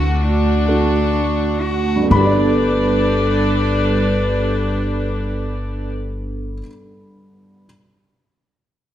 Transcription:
0, 0, Header, 1, 6, 480
1, 0, Start_track
1, 0, Key_signature, 1, "major"
1, 0, Tempo, 891530
1, 614, Tempo, 972447
1, 1094, Tempo, 1011804
1, 1095, Time_signature, 6, 3, 24, 8
1, 4335, End_track
2, 0, Start_track
2, 0, Title_t, "Felt piano"
2, 0, Program_c, 0, 0
2, 0, Control_c, 0, 64, 127
2, 0, Note_on_c, 0, 50, 65
2, 0, Note_on_c, 0, 69, 67
2, 0, Note_on_c, 0, 78, 104
2, 360, Note_off_c, 0, 69, 0
2, 365, Note_on_c, 0, 62, 40
2, 367, Note_on_c, 0, 66, 44
2, 368, Note_on_c, 0, 69, 45
2, 596, Note_off_c, 0, 78, 0
2, 1018, Note_on_c, 0, 43, 52
2, 1044, Note_off_c, 0, 50, 0
2, 1051, Note_on_c, 0, 50, 54
2, 1073, Note_off_c, 0, 62, 0
2, 1074, Note_off_c, 0, 66, 0
2, 1075, Note_off_c, 0, 69, 0
2, 1077, Note_on_c, 0, 59, 51
2, 1093, Note_on_c, 0, 83, 88
2, 1100, Control_c, 0, 64, 0
2, 1108, Note_on_c, 0, 67, 51
2, 1138, Note_on_c, 0, 69, 44
2, 1163, Note_on_c, 0, 74, 64
2, 1174, Control_c, 0, 64, 127
2, 3189, Note_off_c, 0, 43, 0
2, 3205, Note_off_c, 0, 50, 0
2, 3218, Note_off_c, 0, 59, 0
2, 3225, Note_off_c, 0, 83, 0
2, 3233, Note_off_c, 0, 67, 0
2, 3248, Note_off_c, 0, 69, 0
2, 3261, Note_off_c, 0, 74, 0
2, 3725, Control_c, 0, 64, 0
2, 4335, End_track
3, 0, Start_track
3, 0, Title_t, "String section"
3, 0, Program_c, 1, 48
3, 0, Note_on_c, 1, 57, 83
3, 0, Note_on_c, 1, 62, 74
3, 0, Note_on_c, 1, 66, 86
3, 1072, Note_off_c, 1, 57, 0
3, 1077, Note_off_c, 1, 62, 0
3, 1078, Note_off_c, 1, 66, 0
3, 1085, Note_on_c, 1, 67, 69
3, 1086, Note_on_c, 1, 55, 81
3, 1089, Note_on_c, 1, 74, 93
3, 1090, Note_on_c, 1, 71, 78
3, 1091, Note_on_c, 1, 69, 69
3, 2889, Note_off_c, 1, 67, 0
3, 2890, Note_off_c, 1, 55, 0
3, 2891, Note_off_c, 1, 74, 0
3, 2892, Note_off_c, 1, 69, 0
3, 2892, Note_off_c, 1, 71, 0
3, 4335, End_track
4, 0, Start_track
4, 0, Title_t, "Cello"
4, 0, Program_c, 2, 42
4, 0, Note_on_c, 2, 66, 93
4, 130, Note_on_c, 2, 62, 80
4, 138, Note_off_c, 2, 66, 0
4, 848, Note_on_c, 2, 66, 81
4, 856, Note_off_c, 2, 62, 0
4, 1092, Note_off_c, 2, 66, 0
4, 1095, Note_on_c, 2, 62, 81
4, 2894, Note_off_c, 2, 62, 0
4, 4335, End_track
5, 0, Start_track
5, 0, Title_t, "Vibraphone"
5, 0, Program_c, 3, 11
5, 0, Note_on_c, 3, 62, 59
5, 19, Note_on_c, 3, 57, 63
5, 134, Note_on_c, 3, 66, 65
5, 244, Note_off_c, 3, 57, 0
5, 251, Note_on_c, 3, 57, 64
5, 369, Note_off_c, 3, 57, 0
5, 376, Note_on_c, 3, 57, 72
5, 493, Note_off_c, 3, 57, 0
5, 499, Note_on_c, 3, 57, 65
5, 618, Note_off_c, 3, 62, 0
5, 624, Note_on_c, 3, 62, 58
5, 731, Note_off_c, 3, 57, 0
5, 737, Note_on_c, 3, 57, 65
5, 847, Note_off_c, 3, 66, 0
5, 853, Note_on_c, 3, 66, 59
5, 971, Note_off_c, 3, 57, 0
5, 977, Note_on_c, 3, 57, 58
5, 1093, Note_on_c, 3, 59, 76
5, 1102, Note_off_c, 3, 62, 0
5, 1108, Note_on_c, 3, 62, 87
5, 1119, Note_on_c, 3, 69, 84
5, 1144, Note_off_c, 3, 66, 0
5, 1145, Note_off_c, 3, 57, 0
5, 3244, Note_off_c, 3, 59, 0
5, 3252, Note_off_c, 3, 62, 0
5, 3257, Note_off_c, 3, 69, 0
5, 4335, End_track
6, 0, Start_track
6, 0, Title_t, "Upright bass"
6, 0, Program_c, 4, 32
6, 0, Note_on_c, 4, 38, 80
6, 1075, Note_off_c, 4, 38, 0
6, 1092, Note_on_c, 4, 31, 82
6, 3225, Note_off_c, 4, 31, 0
6, 4335, End_track
0, 0, End_of_file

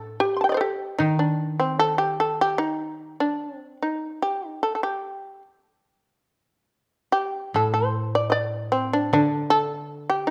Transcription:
0, 0, Header, 1, 3, 480
1, 0, Start_track
1, 0, Tempo, 800000
1, 604, Time_signature, 2, 2, 24, 8
1, 2525, Tempo, 832178
1, 4925, Tempo, 776197
1, 6122, End_track
2, 0, Start_track
2, 0, Title_t, "Shamisen"
2, 0, Program_c, 0, 106
2, 0, Note_on_c, 0, 69, 68
2, 109, Note_off_c, 0, 69, 0
2, 120, Note_on_c, 0, 67, 81
2, 219, Note_on_c, 0, 84, 31
2, 242, Note_off_c, 0, 84, 0
2, 245, Note_on_c, 0, 81, 40
2, 262, Note_off_c, 0, 81, 0
2, 264, Note_on_c, 0, 79, 42
2, 293, Note_off_c, 0, 79, 0
2, 295, Note_on_c, 0, 75, 43
2, 311, Note_on_c, 0, 74, 45
2, 323, Note_off_c, 0, 74, 0
2, 326, Note_on_c, 0, 72, 48
2, 340, Note_off_c, 0, 67, 0
2, 342, Note_on_c, 0, 69, 49
2, 362, Note_off_c, 0, 72, 0
2, 364, Note_on_c, 0, 67, 67
2, 373, Note_off_c, 0, 75, 0
2, 426, Note_off_c, 0, 69, 0
2, 584, Note_off_c, 0, 67, 0
2, 591, Note_on_c, 0, 63, 71
2, 704, Note_off_c, 0, 63, 0
2, 715, Note_on_c, 0, 62, 56
2, 937, Note_off_c, 0, 62, 0
2, 957, Note_on_c, 0, 60, 65
2, 1069, Note_off_c, 0, 60, 0
2, 1077, Note_on_c, 0, 69, 84
2, 1187, Note_off_c, 0, 69, 0
2, 1189, Note_on_c, 0, 67, 72
2, 1306, Note_off_c, 0, 67, 0
2, 1320, Note_on_c, 0, 69, 73
2, 1431, Note_off_c, 0, 69, 0
2, 1448, Note_on_c, 0, 67, 79
2, 1550, Note_on_c, 0, 63, 76
2, 1555, Note_off_c, 0, 67, 0
2, 1889, Note_off_c, 0, 63, 0
2, 1922, Note_on_c, 0, 62, 72
2, 2138, Note_off_c, 0, 62, 0
2, 2138, Note_on_c, 0, 60, 72
2, 2259, Note_off_c, 0, 60, 0
2, 2295, Note_on_c, 0, 63, 59
2, 2516, Note_off_c, 0, 63, 0
2, 2534, Note_on_c, 0, 67, 68
2, 2684, Note_off_c, 0, 67, 0
2, 2684, Note_on_c, 0, 63, 68
2, 2751, Note_off_c, 0, 63, 0
2, 2768, Note_on_c, 0, 69, 59
2, 2831, Note_off_c, 0, 69, 0
2, 2837, Note_on_c, 0, 69, 38
2, 2880, Note_off_c, 0, 69, 0
2, 2885, Note_on_c, 0, 67, 64
2, 3224, Note_off_c, 0, 67, 0
2, 4207, Note_on_c, 0, 67, 74
2, 4436, Note_off_c, 0, 67, 0
2, 4456, Note_on_c, 0, 69, 74
2, 4558, Note_off_c, 0, 69, 0
2, 4560, Note_on_c, 0, 72, 72
2, 4786, Note_off_c, 0, 72, 0
2, 4799, Note_on_c, 0, 74, 80
2, 4875, Note_off_c, 0, 74, 0
2, 4884, Note_on_c, 0, 75, 55
2, 4896, Note_on_c, 0, 74, 90
2, 4924, Note_off_c, 0, 75, 0
2, 5134, Note_off_c, 0, 74, 0
2, 5141, Note_on_c, 0, 60, 77
2, 5266, Note_off_c, 0, 60, 0
2, 5274, Note_on_c, 0, 62, 74
2, 5391, Note_off_c, 0, 62, 0
2, 5398, Note_on_c, 0, 62, 84
2, 5626, Note_on_c, 0, 69, 82
2, 5627, Note_off_c, 0, 62, 0
2, 5969, Note_off_c, 0, 69, 0
2, 5992, Note_on_c, 0, 67, 78
2, 6101, Note_on_c, 0, 63, 68
2, 6109, Note_off_c, 0, 67, 0
2, 6122, Note_off_c, 0, 63, 0
2, 6122, End_track
3, 0, Start_track
3, 0, Title_t, "Koto"
3, 0, Program_c, 1, 107
3, 0, Note_on_c, 1, 45, 62
3, 121, Note_off_c, 1, 45, 0
3, 598, Note_on_c, 1, 51, 47
3, 2035, Note_off_c, 1, 51, 0
3, 4449, Note_on_c, 1, 45, 52
3, 5394, Note_on_c, 1, 50, 53
3, 5405, Note_off_c, 1, 45, 0
3, 6122, Note_off_c, 1, 50, 0
3, 6122, End_track
0, 0, End_of_file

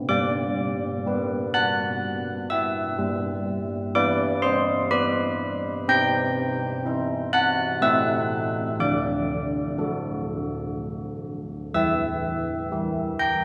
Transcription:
0, 0, Header, 1, 2, 480
1, 0, Start_track
1, 0, Key_signature, 1, "major"
1, 0, Tempo, 963082
1, 42, Time_signature, 3, 2, 24, 8
1, 2442, Tempo, 975610
1, 6646, End_track
2, 0, Start_track
2, 0, Title_t, "Church bells"
2, 0, Program_c, 0, 14
2, 43, Note_on_c, 0, 86, 81
2, 45, Note_on_c, 0, 55, 55
2, 53, Note_on_c, 0, 74, 62
2, 516, Note_off_c, 0, 55, 0
2, 530, Note_on_c, 0, 67, 43
2, 534, Note_on_c, 0, 71, 49
2, 751, Note_off_c, 0, 86, 0
2, 756, Note_off_c, 0, 74, 0
2, 767, Note_on_c, 0, 90, 94
2, 770, Note_on_c, 0, 78, 71
2, 1228, Note_off_c, 0, 78, 0
2, 1228, Note_off_c, 0, 90, 0
2, 1246, Note_on_c, 0, 88, 74
2, 1254, Note_on_c, 0, 76, 58
2, 1468, Note_off_c, 0, 67, 0
2, 1471, Note_off_c, 0, 71, 0
2, 1488, Note_on_c, 0, 55, 57
2, 1945, Note_off_c, 0, 88, 0
2, 1949, Note_off_c, 0, 76, 0
2, 1952, Note_off_c, 0, 55, 0
2, 1969, Note_on_c, 0, 64, 49
2, 1969, Note_on_c, 0, 86, 94
2, 1972, Note_on_c, 0, 71, 57
2, 1973, Note_on_c, 0, 74, 70
2, 2191, Note_off_c, 0, 74, 0
2, 2196, Note_off_c, 0, 86, 0
2, 2204, Note_on_c, 0, 84, 93
2, 2213, Note_on_c, 0, 72, 72
2, 2430, Note_off_c, 0, 72, 0
2, 2433, Note_off_c, 0, 84, 0
2, 2446, Note_on_c, 0, 83, 98
2, 2448, Note_off_c, 0, 71, 0
2, 2454, Note_on_c, 0, 71, 69
2, 2909, Note_off_c, 0, 64, 0
2, 2911, Note_off_c, 0, 83, 0
2, 2914, Note_off_c, 0, 71, 0
2, 2925, Note_on_c, 0, 60, 63
2, 2929, Note_on_c, 0, 91, 103
2, 2930, Note_on_c, 0, 79, 81
2, 3388, Note_off_c, 0, 60, 0
2, 3404, Note_on_c, 0, 64, 50
2, 3410, Note_on_c, 0, 72, 50
2, 3621, Note_off_c, 0, 79, 0
2, 3621, Note_off_c, 0, 91, 0
2, 3638, Note_on_c, 0, 90, 99
2, 3643, Note_on_c, 0, 78, 74
2, 3858, Note_off_c, 0, 64, 0
2, 3860, Note_off_c, 0, 72, 0
2, 3863, Note_off_c, 0, 78, 0
2, 3867, Note_off_c, 0, 90, 0
2, 3876, Note_on_c, 0, 57, 61
2, 3876, Note_on_c, 0, 64, 44
2, 3880, Note_on_c, 0, 88, 94
2, 3881, Note_on_c, 0, 72, 42
2, 3882, Note_on_c, 0, 76, 72
2, 4339, Note_off_c, 0, 64, 0
2, 4341, Note_off_c, 0, 72, 0
2, 4341, Note_off_c, 0, 76, 0
2, 4341, Note_off_c, 0, 88, 0
2, 4343, Note_off_c, 0, 57, 0
2, 4360, Note_on_c, 0, 50, 50
2, 4362, Note_on_c, 0, 86, 79
2, 4363, Note_on_c, 0, 74, 61
2, 4826, Note_off_c, 0, 50, 0
2, 4844, Note_on_c, 0, 66, 43
2, 4847, Note_on_c, 0, 69, 46
2, 5304, Note_off_c, 0, 74, 0
2, 5304, Note_off_c, 0, 86, 0
2, 5789, Note_off_c, 0, 66, 0
2, 5791, Note_off_c, 0, 69, 0
2, 5810, Note_on_c, 0, 88, 82
2, 5811, Note_on_c, 0, 52, 55
2, 5817, Note_on_c, 0, 76, 69
2, 6274, Note_off_c, 0, 52, 0
2, 6288, Note_on_c, 0, 64, 43
2, 6290, Note_on_c, 0, 67, 45
2, 6507, Note_off_c, 0, 88, 0
2, 6511, Note_off_c, 0, 76, 0
2, 6523, Note_on_c, 0, 91, 89
2, 6533, Note_on_c, 0, 79, 68
2, 6646, Note_off_c, 0, 64, 0
2, 6646, Note_off_c, 0, 67, 0
2, 6646, Note_off_c, 0, 79, 0
2, 6646, Note_off_c, 0, 91, 0
2, 6646, End_track
0, 0, End_of_file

